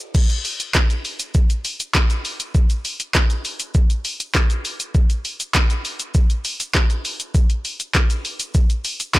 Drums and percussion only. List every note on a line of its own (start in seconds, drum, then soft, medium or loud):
0.00 shaker medium
0.15 kick loud
0.15 crash loud
0.15 shaker medium
0.30 closed hi-hat medium
0.30 shaker medium
0.45 open hi-hat medium
0.45 shaker medium
0.60 closed hi-hat medium
0.60 shaker medium
0.75 kick loud
0.75 snare medium
0.75 clap loud
0.75 clap medium
0.75 shaker medium
0.90 closed hi-hat medium
0.90 shaker medium
1.05 open hi-hat medium
1.05 shaker medium
1.20 closed hi-hat medium
1.20 shaker medium
1.34 kick loud
1.34 shaker medium
1.50 closed hi-hat medium
1.50 shaker medium
1.65 open hi-hat medium
1.65 shaker medium
1.80 closed hi-hat medium
1.80 shaker medium
1.95 kick loud
1.95 snare loud
1.95 clap medium
1.95 clap loud
1.95 shaker medium
2.10 closed hi-hat medium
2.10 shaker medium
2.25 open hi-hat medium
2.25 shaker medium
2.40 closed hi-hat medium
2.40 shaker medium
2.55 kick loud
2.55 shaker medium
2.70 closed hi-hat medium
2.70 shaker medium
2.85 open hi-hat medium
2.85 shaker medium
3.00 closed hi-hat medium
3.00 shaker medium
3.15 kick loud
3.15 snare medium
3.15 clap loud
3.15 clap medium
3.15 shaker medium
3.30 closed hi-hat medium
3.30 shaker medium
3.45 open hi-hat medium
3.45 shaker medium
3.60 closed hi-hat medium
3.60 shaker medium
3.74 kick loud
3.74 shaker medium
3.90 closed hi-hat medium
3.90 shaker medium
4.05 open hi-hat medium
4.05 shaker medium
4.20 closed hi-hat medium
4.20 shaker medium
4.35 kick loud
4.35 snare medium
4.35 clap medium
4.35 clap loud
4.35 shaker medium
4.50 closed hi-hat medium
4.50 shaker medium
4.65 open hi-hat medium
4.65 shaker medium
4.80 closed hi-hat medium
4.80 shaker medium
4.95 kick loud
4.95 shaker medium
5.10 closed hi-hat medium
5.10 shaker medium
5.25 open hi-hat medium
5.25 shaker medium
5.40 closed hi-hat medium
5.40 shaker medium
5.55 kick loud
5.55 snare medium
5.55 clap loud
5.55 shaker medium
5.70 closed hi-hat medium
5.70 shaker medium
5.85 open hi-hat medium
5.85 shaker medium
6.00 closed hi-hat medium
6.00 shaker medium
6.14 kick loud
6.14 shaker medium
6.30 closed hi-hat medium
6.30 shaker medium
6.45 open hi-hat medium
6.45 shaker medium
6.60 closed hi-hat medium
6.60 shaker medium
6.75 kick loud
6.75 snare loud
6.75 clap medium
6.75 clap loud
6.75 shaker medium
6.90 closed hi-hat medium
6.90 shaker medium
7.05 open hi-hat medium
7.05 shaker medium
7.20 closed hi-hat medium
7.20 shaker medium
7.35 kick loud
7.35 shaker medium
7.50 closed hi-hat medium
7.50 shaker medium
7.65 open hi-hat medium
7.65 shaker medium
7.80 closed hi-hat medium
7.80 shaker medium
7.95 kick loud
7.95 snare medium
7.95 clap medium
7.95 clap loud
7.95 shaker medium
8.10 closed hi-hat medium
8.10 shaker medium
8.25 open hi-hat medium
8.25 shaker medium
8.40 closed hi-hat medium
8.40 shaker medium
8.54 kick loud
8.54 shaker medium
8.70 closed hi-hat medium
8.70 shaker medium
8.85 open hi-hat medium
8.85 shaker medium
9.00 closed hi-hat medium
9.00 shaker medium
9.15 kick loud
9.15 snare loud
9.15 clap medium
9.15 clap loud
9.15 shaker medium